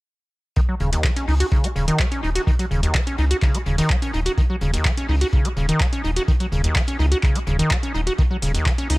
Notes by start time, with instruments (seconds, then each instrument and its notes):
0.56 acid bass D#3, kick, closed hi-hat
0.69 acid bass F#3
0.80 analog synth bass D#1, acid bass C#3, closed hi-hat
0.93 acid bass D#2, closed hi-hat
1.04 acid bass F#3, kick, snare, clap, closed hi-hat
1.16 acid bass C#4, snare, closed hi-hat
1.28 analog synth bass C#2, acid bass D#4, open hi-hat
1.40 acid bass F#4, closed hi-hat
1.51 acid bass C#3, kick, closed hi-hat
1.64 acid bass A#3, closed hi-hat
1.75 analog synth bass D#1, acid bass C#3, snare, closed hi-hat
1.88 acid bass D#3, closed hi-hat
1.99 acid bass F#3, kick, snare, clap, closed hi-hat
2.11 acid bass C#4, closed hi-hat
2.23 analog synth bass D#1, acid bass D#4, closed hi-hat
2.35 acid bass F#4, snare, closed hi-hat
2.47 acid bass D#3, kick, closed hi-hat
2.59 acid bass F#3, closed hi-hat
2.71 analog synth bass D#1, acid bass C#3, closed hi-hat
2.83 acid bass D#2, closed hi-hat
2.94 acid bass F#3, kick, snare, clap, closed hi-hat
3.07 acid bass C#4, closed hi-hat
3.18 analog synth bass C#2, acid bass D#4, snare, closed hi-hat
3.31 acid bass F#4, closed hi-hat
3.42 acid bass C#3, kick, snare, clap, closed hi-hat
3.54 acid bass A#3, closed hi-hat
3.66 analog synth bass D#1, acid bass C#3, closed hi-hat
3.78 acid bass D#3, snare, closed hi-hat
3.90 acid bass F#3, kick, clap
4.02 acid bass C#4, closed hi-hat
4.14 analog synth bass D#1, acid bass D#4, closed hi-hat
4.25 acid bass F#4, closed hi-hat
4.38 acid bass D#3, kick, closed hi-hat
4.50 acid bass F#3
4.61 analog synth bass D#1, acid bass C#3, closed hi-hat
4.73 acid bass D#2, closed hi-hat
4.85 acid bass F#3, kick, snare, clap, closed hi-hat
4.97 acid bass C#4, snare, closed hi-hat
5.09 analog synth bass C#2, acid bass D#4, open hi-hat
5.21 acid bass F#4, closed hi-hat
5.33 acid bass C#3, kick, closed hi-hat
5.45 acid bass A#3, closed hi-hat
5.56 analog synth bass D#1, acid bass C#3, snare, closed hi-hat
5.69 acid bass D#3, closed hi-hat
5.80 acid bass F#3, kick, snare, clap, closed hi-hat
5.93 acid bass C#4, closed hi-hat
6.04 analog synth bass D#1, acid bass D#4, closed hi-hat
6.16 acid bass F#4, snare, closed hi-hat
6.28 acid bass D#3, kick, closed hi-hat
6.40 acid bass F#3, closed hi-hat
6.52 analog synth bass D#1, acid bass C#3, closed hi-hat
6.64 acid bass D#2, closed hi-hat
6.76 acid bass F#3, kick, snare, clap, closed hi-hat
6.87 acid bass C#4, closed hi-hat
6.99 analog synth bass C#2, acid bass D#4, snare, closed hi-hat
7.12 acid bass F#4, closed hi-hat
7.23 acid bass C#3, kick, clap, closed hi-hat
7.35 acid bass A#3, closed hi-hat
7.47 analog synth bass D#1, acid bass C#3, closed hi-hat
7.59 acid bass D#3, closed hi-hat
7.70 acid bass F#3, kick, snare, clap, closed hi-hat
7.83 acid bass C#4, closed hi-hat
7.95 analog synth bass D#1, acid bass D#4, closed hi-hat
8.07 acid bass F#4, closed hi-hat
8.18 acid bass D#3, kick, closed hi-hat
8.31 acid bass F#3
8.42 analog synth bass D#1, acid bass C#3, closed hi-hat, open hi-hat
8.54 acid bass D#2, closed hi-hat
8.66 acid bass F#3, kick, snare, clap, closed hi-hat
8.78 acid bass C#4, snare, closed hi-hat
8.90 analog synth bass C#2, acid bass D#4, open hi-hat